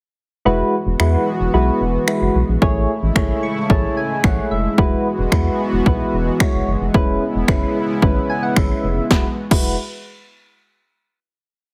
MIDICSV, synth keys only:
0, 0, Header, 1, 2, 480
1, 0, Start_track
1, 0, Key_signature, 4, "major"
1, 0, Tempo, 540541
1, 407, Time_signature, 4, 2, 24, 8
1, 10421, End_track
2, 0, Start_track
2, 0, Title_t, "Synth keys"
2, 0, Program_c, 0, 88
2, 403, Note_on_c, 0, 56, 90
2, 404, Note_on_c, 0, 64, 85
2, 405, Note_on_c, 0, 66, 84
2, 407, Note_on_c, 0, 71, 99
2, 666, Note_off_c, 0, 56, 0
2, 667, Note_off_c, 0, 64, 0
2, 668, Note_off_c, 0, 66, 0
2, 668, Note_off_c, 0, 71, 0
2, 883, Note_on_c, 0, 56, 83
2, 885, Note_on_c, 0, 64, 79
2, 886, Note_on_c, 0, 66, 75
2, 887, Note_on_c, 0, 71, 90
2, 1147, Note_off_c, 0, 56, 0
2, 1147, Note_off_c, 0, 64, 0
2, 1148, Note_off_c, 0, 66, 0
2, 1149, Note_off_c, 0, 71, 0
2, 1362, Note_on_c, 0, 56, 79
2, 1364, Note_on_c, 0, 64, 72
2, 1365, Note_on_c, 0, 66, 78
2, 1367, Note_on_c, 0, 71, 90
2, 1626, Note_off_c, 0, 56, 0
2, 1627, Note_off_c, 0, 64, 0
2, 1628, Note_off_c, 0, 66, 0
2, 1629, Note_off_c, 0, 71, 0
2, 1843, Note_on_c, 0, 56, 79
2, 1844, Note_on_c, 0, 64, 71
2, 1846, Note_on_c, 0, 66, 71
2, 1847, Note_on_c, 0, 71, 85
2, 2106, Note_off_c, 0, 56, 0
2, 2107, Note_off_c, 0, 64, 0
2, 2108, Note_off_c, 0, 66, 0
2, 2109, Note_off_c, 0, 71, 0
2, 2322, Note_on_c, 0, 57, 92
2, 2324, Note_on_c, 0, 64, 84
2, 2325, Note_on_c, 0, 68, 87
2, 2327, Note_on_c, 0, 73, 102
2, 2586, Note_off_c, 0, 57, 0
2, 2587, Note_off_c, 0, 64, 0
2, 2588, Note_off_c, 0, 68, 0
2, 2589, Note_off_c, 0, 73, 0
2, 2802, Note_on_c, 0, 57, 82
2, 2803, Note_on_c, 0, 64, 76
2, 2805, Note_on_c, 0, 68, 74
2, 2807, Note_on_c, 0, 73, 91
2, 3045, Note_on_c, 0, 85, 69
2, 3066, Note_off_c, 0, 57, 0
2, 3067, Note_off_c, 0, 64, 0
2, 3068, Note_off_c, 0, 68, 0
2, 3068, Note_off_c, 0, 73, 0
2, 3269, Note_off_c, 0, 85, 0
2, 3282, Note_on_c, 0, 57, 83
2, 3284, Note_on_c, 0, 64, 78
2, 3285, Note_on_c, 0, 68, 74
2, 3285, Note_on_c, 0, 81, 72
2, 3287, Note_on_c, 0, 73, 94
2, 3509, Note_off_c, 0, 81, 0
2, 3526, Note_on_c, 0, 80, 68
2, 3546, Note_off_c, 0, 57, 0
2, 3547, Note_off_c, 0, 64, 0
2, 3548, Note_off_c, 0, 68, 0
2, 3549, Note_off_c, 0, 73, 0
2, 3749, Note_off_c, 0, 80, 0
2, 3764, Note_on_c, 0, 57, 78
2, 3765, Note_on_c, 0, 64, 72
2, 3766, Note_on_c, 0, 68, 73
2, 3766, Note_on_c, 0, 78, 70
2, 3768, Note_on_c, 0, 73, 83
2, 3989, Note_off_c, 0, 78, 0
2, 4006, Note_on_c, 0, 76, 69
2, 4027, Note_off_c, 0, 57, 0
2, 4028, Note_off_c, 0, 64, 0
2, 4028, Note_off_c, 0, 68, 0
2, 4029, Note_off_c, 0, 73, 0
2, 4230, Note_off_c, 0, 76, 0
2, 4243, Note_on_c, 0, 56, 92
2, 4244, Note_on_c, 0, 64, 90
2, 4246, Note_on_c, 0, 66, 86
2, 4247, Note_on_c, 0, 71, 101
2, 4506, Note_off_c, 0, 56, 0
2, 4507, Note_off_c, 0, 64, 0
2, 4508, Note_off_c, 0, 66, 0
2, 4509, Note_off_c, 0, 71, 0
2, 4724, Note_on_c, 0, 56, 84
2, 4725, Note_on_c, 0, 64, 77
2, 4727, Note_on_c, 0, 66, 77
2, 4728, Note_on_c, 0, 71, 92
2, 4987, Note_off_c, 0, 56, 0
2, 4988, Note_off_c, 0, 64, 0
2, 4988, Note_off_c, 0, 66, 0
2, 4989, Note_off_c, 0, 71, 0
2, 5203, Note_on_c, 0, 56, 80
2, 5205, Note_on_c, 0, 64, 74
2, 5206, Note_on_c, 0, 66, 75
2, 5208, Note_on_c, 0, 71, 93
2, 5467, Note_off_c, 0, 56, 0
2, 5468, Note_off_c, 0, 64, 0
2, 5468, Note_off_c, 0, 66, 0
2, 5469, Note_off_c, 0, 71, 0
2, 5683, Note_on_c, 0, 56, 79
2, 5685, Note_on_c, 0, 64, 69
2, 5687, Note_on_c, 0, 66, 74
2, 5688, Note_on_c, 0, 73, 86
2, 5946, Note_off_c, 0, 56, 0
2, 5947, Note_off_c, 0, 64, 0
2, 5948, Note_off_c, 0, 66, 0
2, 5949, Note_off_c, 0, 73, 0
2, 6164, Note_on_c, 0, 56, 94
2, 6165, Note_on_c, 0, 61, 86
2, 6166, Note_on_c, 0, 64, 85
2, 6168, Note_on_c, 0, 71, 105
2, 6427, Note_off_c, 0, 56, 0
2, 6428, Note_off_c, 0, 61, 0
2, 6428, Note_off_c, 0, 64, 0
2, 6429, Note_off_c, 0, 71, 0
2, 6644, Note_on_c, 0, 56, 83
2, 6645, Note_on_c, 0, 61, 81
2, 6647, Note_on_c, 0, 64, 76
2, 6648, Note_on_c, 0, 71, 95
2, 6907, Note_off_c, 0, 56, 0
2, 6908, Note_off_c, 0, 61, 0
2, 6909, Note_off_c, 0, 64, 0
2, 6909, Note_off_c, 0, 71, 0
2, 7124, Note_on_c, 0, 56, 78
2, 7125, Note_on_c, 0, 61, 76
2, 7126, Note_on_c, 0, 64, 75
2, 7128, Note_on_c, 0, 71, 94
2, 7366, Note_on_c, 0, 80, 72
2, 7387, Note_off_c, 0, 56, 0
2, 7388, Note_off_c, 0, 61, 0
2, 7388, Note_off_c, 0, 64, 0
2, 7389, Note_off_c, 0, 71, 0
2, 7478, Note_off_c, 0, 80, 0
2, 7484, Note_on_c, 0, 78, 66
2, 7597, Note_off_c, 0, 78, 0
2, 7602, Note_on_c, 0, 56, 77
2, 7603, Note_on_c, 0, 61, 73
2, 7604, Note_on_c, 0, 76, 70
2, 7605, Note_on_c, 0, 64, 73
2, 7607, Note_on_c, 0, 71, 83
2, 7866, Note_off_c, 0, 56, 0
2, 7866, Note_off_c, 0, 61, 0
2, 7867, Note_off_c, 0, 64, 0
2, 7868, Note_off_c, 0, 71, 0
2, 8051, Note_off_c, 0, 76, 0
2, 8086, Note_on_c, 0, 56, 80
2, 8086, Note_on_c, 0, 64, 75
2, 8086, Note_on_c, 0, 66, 69
2, 8086, Note_on_c, 0, 71, 89
2, 8220, Note_off_c, 0, 56, 0
2, 8220, Note_off_c, 0, 64, 0
2, 8220, Note_off_c, 0, 66, 0
2, 8220, Note_off_c, 0, 71, 0
2, 8445, Note_on_c, 0, 66, 75
2, 8445, Note_on_c, 0, 71, 88
2, 8446, Note_on_c, 0, 56, 76
2, 8446, Note_on_c, 0, 64, 70
2, 8669, Note_off_c, 0, 56, 0
2, 8669, Note_off_c, 0, 64, 0
2, 8669, Note_off_c, 0, 66, 0
2, 8669, Note_off_c, 0, 71, 0
2, 10421, End_track
0, 0, End_of_file